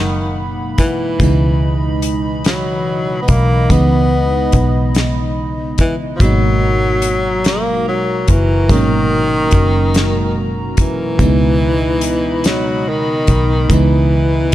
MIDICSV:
0, 0, Header, 1, 6, 480
1, 0, Start_track
1, 0, Tempo, 833333
1, 692, Time_signature, 6, 3, 24, 8
1, 8380, End_track
2, 0, Start_track
2, 0, Title_t, "Analog synth pad"
2, 0, Program_c, 0, 89
2, 0, Note_on_c, 0, 58, 81
2, 0, Note_on_c, 0, 78, 80
2, 0, Note_on_c, 0, 83, 98
2, 665, Note_off_c, 0, 78, 0
2, 667, Note_off_c, 0, 58, 0
2, 691, Note_on_c, 0, 52, 88
2, 694, Note_on_c, 0, 75, 82
2, 3547, Note_off_c, 0, 83, 0
2, 3548, Note_off_c, 0, 52, 0
2, 3550, Note_off_c, 0, 75, 0
2, 3573, Note_on_c, 0, 70, 81
2, 3575, Note_on_c, 0, 66, 83
2, 3575, Note_on_c, 0, 82, 89
2, 6429, Note_off_c, 0, 70, 0
2, 6430, Note_off_c, 0, 66, 0
2, 6430, Note_off_c, 0, 82, 0
2, 6451, Note_on_c, 0, 63, 89
2, 6452, Note_on_c, 0, 83, 99
2, 6456, Note_on_c, 0, 75, 82
2, 8380, Note_off_c, 0, 63, 0
2, 8380, Note_off_c, 0, 75, 0
2, 8380, Note_off_c, 0, 83, 0
2, 8380, End_track
3, 0, Start_track
3, 0, Title_t, "FM electric piano"
3, 0, Program_c, 1, 5
3, 0, Control_c, 1, 64, 127
3, 0, Note_on_c, 1, 47, 73
3, 0, Note_on_c, 1, 54, 64
3, 0, Note_on_c, 1, 56, 61
3, 0, Note_on_c, 1, 58, 65
3, 0, Note_on_c, 1, 63, 75
3, 660, Note_off_c, 1, 47, 0
3, 664, Note_off_c, 1, 54, 0
3, 668, Note_off_c, 1, 56, 0
3, 672, Note_off_c, 1, 58, 0
3, 675, Note_off_c, 1, 63, 0
3, 682, Note_on_c, 1, 49, 78
3, 691, Note_on_c, 1, 52, 62
3, 697, Note_on_c, 1, 56, 67
3, 700, Control_c, 1, 64, 0
3, 704, Note_on_c, 1, 47, 70
3, 712, Note_on_c, 1, 63, 80
3, 788, Control_c, 1, 64, 127
3, 2104, Note_off_c, 1, 49, 0
3, 2108, Note_off_c, 1, 52, 0
3, 2111, Note_off_c, 1, 56, 0
3, 2115, Note_off_c, 1, 47, 0
3, 2119, Note_off_c, 1, 63, 0
3, 2120, Note_on_c, 1, 49, 68
3, 2126, Note_on_c, 1, 52, 64
3, 2134, Note_on_c, 1, 56, 66
3, 2140, Note_on_c, 1, 59, 65
3, 2147, Note_on_c, 1, 63, 78
3, 3543, Note_off_c, 1, 49, 0
3, 3546, Note_off_c, 1, 52, 0
3, 3550, Note_off_c, 1, 56, 0
3, 3553, Note_off_c, 1, 59, 0
3, 3556, Note_off_c, 1, 63, 0
3, 3566, Note_on_c, 1, 47, 70
3, 3575, Note_on_c, 1, 54, 62
3, 3580, Control_c, 1, 64, 0
3, 3581, Note_on_c, 1, 56, 64
3, 3589, Note_on_c, 1, 58, 68
3, 3596, Note_on_c, 1, 63, 74
3, 3663, Control_c, 1, 64, 127
3, 4986, Note_off_c, 1, 47, 0
3, 4990, Note_off_c, 1, 54, 0
3, 4993, Note_off_c, 1, 56, 0
3, 4997, Note_off_c, 1, 58, 0
3, 5000, Note_on_c, 1, 46, 55
3, 5001, Note_off_c, 1, 63, 0
3, 5008, Note_on_c, 1, 54, 65
3, 5012, Note_on_c, 1, 56, 68
3, 5020, Note_on_c, 1, 58, 67
3, 5029, Note_on_c, 1, 61, 77
3, 5036, Note_on_c, 1, 47, 74
3, 5043, Note_off_c, 1, 46, 0
3, 6427, Note_off_c, 1, 54, 0
3, 6429, Note_off_c, 1, 56, 0
3, 6433, Note_off_c, 1, 58, 0
3, 6437, Note_off_c, 1, 47, 0
3, 6437, Note_off_c, 1, 61, 0
3, 6438, Note_on_c, 1, 49, 71
3, 6444, Note_on_c, 1, 47, 70
3, 6453, Note_on_c, 1, 56, 64
3, 6459, Control_c, 1, 64, 0
3, 6459, Note_on_c, 1, 59, 67
3, 6466, Note_on_c, 1, 63, 76
3, 6569, Control_c, 1, 64, 127
3, 7862, Note_off_c, 1, 49, 0
3, 7865, Note_off_c, 1, 47, 0
3, 7869, Note_off_c, 1, 56, 0
3, 7872, Note_off_c, 1, 59, 0
3, 7876, Note_off_c, 1, 63, 0
3, 7882, Note_on_c, 1, 49, 75
3, 7887, Note_on_c, 1, 52, 63
3, 7894, Note_on_c, 1, 56, 64
3, 7903, Note_on_c, 1, 59, 66
3, 7911, Note_on_c, 1, 63, 79
3, 8380, Note_off_c, 1, 49, 0
3, 8380, Note_off_c, 1, 52, 0
3, 8380, Note_off_c, 1, 56, 0
3, 8380, Note_off_c, 1, 59, 0
3, 8380, Note_off_c, 1, 63, 0
3, 8380, End_track
4, 0, Start_track
4, 0, Title_t, "Tenor saxophone"
4, 0, Program_c, 2, 66
4, 0, Note_on_c, 2, 51, 102
4, 296, Note_off_c, 2, 51, 0
4, 454, Note_on_c, 2, 52, 94
4, 1150, Note_off_c, 2, 52, 0
4, 1417, Note_on_c, 2, 54, 88
4, 1831, Note_off_c, 2, 54, 0
4, 1854, Note_on_c, 2, 59, 80
4, 1900, Note_on_c, 2, 58, 105
4, 1908, Note_off_c, 2, 59, 0
4, 2140, Note_on_c, 2, 59, 105
4, 2148, Note_off_c, 2, 58, 0
4, 2856, Note_off_c, 2, 59, 0
4, 3344, Note_on_c, 2, 52, 100
4, 3431, Note_off_c, 2, 52, 0
4, 3546, Note_on_c, 2, 53, 80
4, 3579, Note_on_c, 2, 54, 103
4, 3588, Note_off_c, 2, 53, 0
4, 4302, Note_on_c, 2, 58, 104
4, 4311, Note_off_c, 2, 54, 0
4, 4537, Note_off_c, 2, 58, 0
4, 4540, Note_on_c, 2, 54, 100
4, 4781, Note_on_c, 2, 52, 99
4, 4790, Note_off_c, 2, 54, 0
4, 5018, Note_on_c, 2, 51, 117
4, 5027, Note_off_c, 2, 52, 0
4, 6059, Note_off_c, 2, 51, 0
4, 6225, Note_on_c, 2, 52, 111
4, 7179, Note_on_c, 2, 54, 91
4, 7188, Note_off_c, 2, 52, 0
4, 7423, Note_on_c, 2, 51, 102
4, 7432, Note_off_c, 2, 54, 0
4, 7909, Note_on_c, 2, 52, 100
4, 7918, Note_off_c, 2, 51, 0
4, 8380, Note_off_c, 2, 52, 0
4, 8380, End_track
5, 0, Start_track
5, 0, Title_t, "Fingered electric bass"
5, 0, Program_c, 3, 33
5, 0, Note_on_c, 3, 30, 93
5, 669, Note_off_c, 3, 30, 0
5, 694, Note_on_c, 3, 37, 102
5, 1870, Note_off_c, 3, 37, 0
5, 1900, Note_on_c, 3, 35, 90
5, 2113, Note_off_c, 3, 35, 0
5, 2136, Note_on_c, 3, 37, 94
5, 2591, Note_off_c, 3, 37, 0
5, 2617, Note_on_c, 3, 35, 95
5, 3551, Note_off_c, 3, 35, 0
5, 3577, Note_on_c, 3, 32, 102
5, 4751, Note_off_c, 3, 32, 0
5, 4777, Note_on_c, 3, 30, 99
5, 5012, Note_off_c, 3, 30, 0
5, 5012, Note_on_c, 3, 32, 104
5, 5469, Note_off_c, 3, 32, 0
5, 5492, Note_on_c, 3, 30, 94
5, 6429, Note_off_c, 3, 30, 0
5, 6450, Note_on_c, 3, 37, 96
5, 7628, Note_off_c, 3, 37, 0
5, 7656, Note_on_c, 3, 35, 105
5, 7871, Note_off_c, 3, 35, 0
5, 7894, Note_on_c, 3, 37, 107
5, 8373, Note_off_c, 3, 37, 0
5, 8380, End_track
6, 0, Start_track
6, 0, Title_t, "Drums"
6, 449, Note_on_c, 9, 42, 76
6, 452, Note_on_c, 9, 36, 80
6, 507, Note_off_c, 9, 42, 0
6, 509, Note_off_c, 9, 36, 0
6, 690, Note_on_c, 9, 36, 102
6, 693, Note_on_c, 9, 42, 70
6, 748, Note_off_c, 9, 36, 0
6, 751, Note_off_c, 9, 42, 0
6, 1165, Note_on_c, 9, 42, 82
6, 1223, Note_off_c, 9, 42, 0
6, 1408, Note_on_c, 9, 42, 77
6, 1419, Note_on_c, 9, 38, 111
6, 1466, Note_off_c, 9, 42, 0
6, 1476, Note_off_c, 9, 38, 0
6, 1889, Note_on_c, 9, 42, 74
6, 1893, Note_on_c, 9, 36, 83
6, 1947, Note_off_c, 9, 42, 0
6, 1951, Note_off_c, 9, 36, 0
6, 2131, Note_on_c, 9, 36, 106
6, 2133, Note_on_c, 9, 42, 70
6, 2189, Note_off_c, 9, 36, 0
6, 2191, Note_off_c, 9, 42, 0
6, 2605, Note_on_c, 9, 42, 79
6, 2611, Note_on_c, 9, 36, 98
6, 2663, Note_off_c, 9, 42, 0
6, 2669, Note_off_c, 9, 36, 0
6, 2849, Note_on_c, 9, 42, 68
6, 2859, Note_on_c, 9, 38, 107
6, 2907, Note_off_c, 9, 42, 0
6, 2917, Note_off_c, 9, 38, 0
6, 3328, Note_on_c, 9, 42, 77
6, 3334, Note_on_c, 9, 36, 83
6, 3386, Note_off_c, 9, 42, 0
6, 3392, Note_off_c, 9, 36, 0
6, 3572, Note_on_c, 9, 36, 107
6, 3574, Note_on_c, 9, 42, 73
6, 3629, Note_off_c, 9, 36, 0
6, 3631, Note_off_c, 9, 42, 0
6, 4043, Note_on_c, 9, 42, 85
6, 4101, Note_off_c, 9, 42, 0
6, 4288, Note_on_c, 9, 42, 75
6, 4298, Note_on_c, 9, 38, 108
6, 4345, Note_off_c, 9, 42, 0
6, 4356, Note_off_c, 9, 38, 0
6, 4767, Note_on_c, 9, 42, 85
6, 4772, Note_on_c, 9, 36, 82
6, 4825, Note_off_c, 9, 42, 0
6, 4829, Note_off_c, 9, 36, 0
6, 5008, Note_on_c, 9, 36, 105
6, 5010, Note_on_c, 9, 42, 71
6, 5066, Note_off_c, 9, 36, 0
6, 5067, Note_off_c, 9, 42, 0
6, 5478, Note_on_c, 9, 42, 75
6, 5487, Note_on_c, 9, 36, 86
6, 5536, Note_off_c, 9, 42, 0
6, 5544, Note_off_c, 9, 36, 0
6, 5727, Note_on_c, 9, 42, 69
6, 5737, Note_on_c, 9, 38, 107
6, 5785, Note_off_c, 9, 42, 0
6, 5795, Note_off_c, 9, 38, 0
6, 6204, Note_on_c, 9, 42, 78
6, 6209, Note_on_c, 9, 36, 82
6, 6262, Note_off_c, 9, 42, 0
6, 6266, Note_off_c, 9, 36, 0
6, 6446, Note_on_c, 9, 36, 105
6, 6448, Note_on_c, 9, 42, 67
6, 6504, Note_off_c, 9, 36, 0
6, 6505, Note_off_c, 9, 42, 0
6, 6919, Note_on_c, 9, 42, 83
6, 6977, Note_off_c, 9, 42, 0
6, 7166, Note_on_c, 9, 42, 74
6, 7176, Note_on_c, 9, 38, 107
6, 7223, Note_off_c, 9, 42, 0
6, 7234, Note_off_c, 9, 38, 0
6, 7645, Note_on_c, 9, 42, 76
6, 7650, Note_on_c, 9, 36, 86
6, 7702, Note_off_c, 9, 42, 0
6, 7708, Note_off_c, 9, 36, 0
6, 7889, Note_on_c, 9, 36, 100
6, 7892, Note_on_c, 9, 42, 68
6, 7947, Note_off_c, 9, 36, 0
6, 7949, Note_off_c, 9, 42, 0
6, 8380, End_track
0, 0, End_of_file